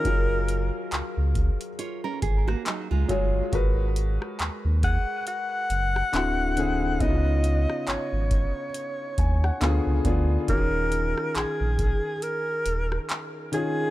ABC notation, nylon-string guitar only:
X:1
M:4/4
L:1/16
Q:"Swing 16ths" 1/4=69
K:G#dor
V:1 name="Nylon-string guitar"
z8 [Ec] [CA] G [A,F] [F,D] [G,E]3 | z16 | z16 | z16 |]